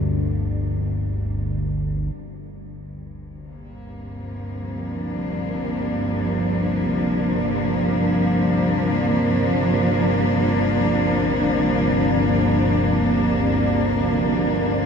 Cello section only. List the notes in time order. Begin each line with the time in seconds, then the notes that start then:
Already playing: G2 C3 F3 A#3 D4
2.17 G2
3.31 C3
3.46 A#3
4.16 F3
4.90 D4